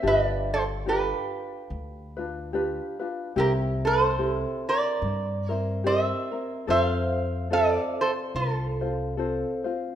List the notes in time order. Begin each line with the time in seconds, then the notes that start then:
0.03 G1 D4 F4 G4
0.07 B4 D#5
0.24 D5
0.54 A4 C5
0.86 D4 F4 G4 B4
1.70 D2
2.17 D4 F4 B4
2.53 D4 F4 G4 B4
2.99 D4 F4 B4
3.36 C2 C4 E4 G4 A#4
3.85 A4 C5
4.18 C4 E4 G4
4.69 A#4 D5
5.02 G2
5.49 C4 E4 A#4 C5
5.84 C4 E4 G4 A#4 C5 E5
6.31 C4 E4 A#4
6.67 F2 C4 F4 A4 C5 E5
6.81 F5
7.50 C4 F4 A4 C5 D5
8.01 A4 C5
8.35 C2 F4 A4
8.81 C4 F4 C5
9.17 C4 F4 A4 C5
9.64 C4 F4 C5